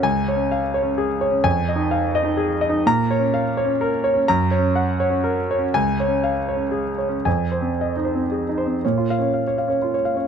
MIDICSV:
0, 0, Header, 1, 2, 480
1, 0, Start_track
1, 0, Key_signature, -5, "minor"
1, 0, Tempo, 469484
1, 32, Time_signature, 3, 2, 24, 8
1, 2912, Tempo, 479233
1, 5792, Tempo, 500835
1, 6752, Tempo, 525394
1, 8672, Tempo, 497925
1, 10068, End_track
2, 0, Start_track
2, 0, Title_t, "Grand piano"
2, 0, Program_c, 0, 0
2, 0, Control_c, 0, 64, 127
2, 27, Note_on_c, 0, 37, 61
2, 34, Note_on_c, 0, 80, 74
2, 50, Control_c, 0, 64, 0
2, 222, Control_c, 0, 64, 127
2, 290, Note_on_c, 0, 73, 50
2, 364, Note_on_c, 0, 61, 48
2, 428, Note_off_c, 0, 80, 0
2, 526, Note_on_c, 0, 77, 55
2, 625, Note_off_c, 0, 61, 0
2, 678, Note_off_c, 0, 73, 0
2, 759, Note_on_c, 0, 73, 54
2, 846, Note_on_c, 0, 61, 50
2, 912, Note_off_c, 0, 77, 0
2, 1000, Note_on_c, 0, 68, 55
2, 1102, Note_off_c, 0, 61, 0
2, 1146, Note_off_c, 0, 73, 0
2, 1238, Note_on_c, 0, 73, 54
2, 1332, Note_on_c, 0, 61, 49
2, 1385, Note_off_c, 0, 68, 0
2, 1440, Note_off_c, 0, 37, 0
2, 1470, Note_on_c, 0, 41, 64
2, 1471, Note_on_c, 0, 80, 82
2, 1480, Note_off_c, 0, 73, 0
2, 1487, Note_off_c, 0, 61, 0
2, 1502, Control_c, 0, 64, 0
2, 1646, Control_c, 0, 64, 127
2, 1722, Note_on_c, 0, 75, 52
2, 1795, Note_on_c, 0, 63, 49
2, 1858, Note_off_c, 0, 80, 0
2, 1955, Note_on_c, 0, 77, 60
2, 2051, Note_off_c, 0, 63, 0
2, 2102, Note_off_c, 0, 75, 0
2, 2198, Note_on_c, 0, 75, 59
2, 2282, Note_on_c, 0, 63, 51
2, 2336, Note_off_c, 0, 77, 0
2, 2425, Note_on_c, 0, 68, 57
2, 2532, Note_off_c, 0, 63, 0
2, 2577, Note_off_c, 0, 75, 0
2, 2671, Note_on_c, 0, 75, 60
2, 2755, Note_on_c, 0, 63, 54
2, 2812, Note_off_c, 0, 68, 0
2, 2864, Note_off_c, 0, 41, 0
2, 2911, Note_off_c, 0, 75, 0
2, 2913, Note_off_c, 0, 63, 0
2, 2929, Note_on_c, 0, 46, 74
2, 2931, Control_c, 0, 64, 0
2, 2933, Note_on_c, 0, 82, 85
2, 3074, Control_c, 0, 64, 127
2, 3170, Note_on_c, 0, 73, 61
2, 3254, Note_on_c, 0, 61, 54
2, 3303, Note_off_c, 0, 82, 0
2, 3402, Note_on_c, 0, 77, 62
2, 3498, Note_off_c, 0, 61, 0
2, 3544, Note_off_c, 0, 73, 0
2, 3638, Note_on_c, 0, 73, 59
2, 3711, Note_on_c, 0, 61, 56
2, 3781, Note_off_c, 0, 77, 0
2, 3875, Note_on_c, 0, 70, 60
2, 3966, Note_off_c, 0, 61, 0
2, 4017, Note_off_c, 0, 73, 0
2, 4105, Note_on_c, 0, 73, 61
2, 4202, Note_on_c, 0, 61, 54
2, 4252, Note_off_c, 0, 70, 0
2, 4313, Note_off_c, 0, 46, 0
2, 4342, Note_off_c, 0, 73, 0
2, 4349, Note_on_c, 0, 82, 81
2, 4352, Note_off_c, 0, 61, 0
2, 4359, Note_on_c, 0, 42, 67
2, 4360, Control_c, 0, 64, 0
2, 4543, Control_c, 0, 64, 127
2, 4579, Note_on_c, 0, 73, 54
2, 4654, Note_on_c, 0, 61, 51
2, 4723, Note_off_c, 0, 82, 0
2, 4822, Note_on_c, 0, 78, 56
2, 4909, Note_off_c, 0, 61, 0
2, 4959, Note_off_c, 0, 73, 0
2, 5067, Note_on_c, 0, 73, 59
2, 5166, Note_on_c, 0, 61, 52
2, 5207, Note_off_c, 0, 78, 0
2, 5305, Note_on_c, 0, 70, 55
2, 5415, Note_off_c, 0, 61, 0
2, 5455, Note_off_c, 0, 73, 0
2, 5576, Note_on_c, 0, 73, 56
2, 5655, Note_on_c, 0, 61, 51
2, 5695, Note_off_c, 0, 70, 0
2, 5759, Note_off_c, 0, 42, 0
2, 5804, Note_off_c, 0, 61, 0
2, 5805, Note_off_c, 0, 73, 0
2, 5809, Note_on_c, 0, 80, 75
2, 5810, Control_c, 0, 64, 0
2, 5810, Note_on_c, 0, 37, 66
2, 5988, Control_c, 0, 64, 127
2, 6058, Note_on_c, 0, 73, 49
2, 6127, Note_on_c, 0, 61, 45
2, 6182, Note_off_c, 0, 80, 0
2, 6284, Note_on_c, 0, 77, 52
2, 6374, Note_off_c, 0, 61, 0
2, 6427, Note_off_c, 0, 73, 0
2, 6522, Note_on_c, 0, 73, 48
2, 6593, Note_on_c, 0, 61, 45
2, 6661, Note_off_c, 0, 77, 0
2, 6741, Note_on_c, 0, 68, 46
2, 6849, Note_off_c, 0, 61, 0
2, 6901, Note_off_c, 0, 73, 0
2, 6987, Note_on_c, 0, 73, 42
2, 7083, Note_on_c, 0, 61, 40
2, 7132, Note_off_c, 0, 68, 0
2, 7208, Note_off_c, 0, 37, 0
2, 7234, Note_off_c, 0, 73, 0
2, 7234, Note_on_c, 0, 80, 57
2, 7238, Note_on_c, 0, 41, 49
2, 7241, Note_off_c, 0, 61, 0
2, 7256, Control_c, 0, 64, 0
2, 7396, Control_c, 0, 64, 127
2, 7475, Note_on_c, 0, 72, 39
2, 7564, Note_on_c, 0, 60, 37
2, 7626, Note_off_c, 0, 80, 0
2, 7744, Note_on_c, 0, 75, 41
2, 7820, Note_off_c, 0, 60, 0
2, 7863, Note_off_c, 0, 72, 0
2, 7886, Note_on_c, 0, 63, 39
2, 7958, Note_on_c, 0, 72, 39
2, 8055, Note_on_c, 0, 60, 37
2, 8112, Note_off_c, 0, 75, 0
2, 8135, Note_off_c, 0, 63, 0
2, 8205, Note_on_c, 0, 68, 38
2, 8298, Note_off_c, 0, 60, 0
2, 8336, Note_off_c, 0, 72, 0
2, 8363, Note_on_c, 0, 63, 37
2, 8444, Note_on_c, 0, 72, 37
2, 8524, Note_on_c, 0, 60, 33
2, 8583, Note_off_c, 0, 68, 0
2, 8614, Note_off_c, 0, 63, 0
2, 8637, Note_off_c, 0, 41, 0
2, 8677, Note_off_c, 0, 60, 0
2, 8677, Note_off_c, 0, 72, 0
2, 8688, Control_c, 0, 64, 0
2, 8690, Note_on_c, 0, 73, 44
2, 8699, Note_on_c, 0, 46, 48
2, 8815, Note_on_c, 0, 65, 42
2, 8870, Control_c, 0, 64, 127
2, 8877, Note_off_c, 0, 73, 0
2, 8938, Note_on_c, 0, 77, 55
2, 9001, Note_off_c, 0, 65, 0
2, 9016, Note_on_c, 0, 61, 38
2, 9049, Note_on_c, 0, 73, 38
2, 9122, Note_off_c, 0, 77, 0
2, 9163, Note_on_c, 0, 77, 43
2, 9237, Note_off_c, 0, 73, 0
2, 9265, Note_off_c, 0, 61, 0
2, 9297, Note_on_c, 0, 73, 42
2, 9354, Note_off_c, 0, 77, 0
2, 9400, Note_on_c, 0, 77, 43
2, 9481, Note_off_c, 0, 73, 0
2, 9494, Note_on_c, 0, 61, 36
2, 9512, Note_on_c, 0, 73, 40
2, 9592, Note_off_c, 0, 77, 0
2, 9631, Note_on_c, 0, 65, 39
2, 9707, Note_off_c, 0, 73, 0
2, 9742, Note_off_c, 0, 61, 0
2, 9746, Note_on_c, 0, 73, 41
2, 9825, Note_off_c, 0, 65, 0
2, 9852, Note_on_c, 0, 77, 42
2, 9939, Note_on_c, 0, 61, 37
2, 9940, Note_off_c, 0, 73, 0
2, 9966, Note_on_c, 0, 73, 38
2, 10051, Note_off_c, 0, 77, 0
2, 10068, Note_off_c, 0, 46, 0
2, 10068, Note_off_c, 0, 61, 0
2, 10068, Note_off_c, 0, 73, 0
2, 10068, End_track
0, 0, End_of_file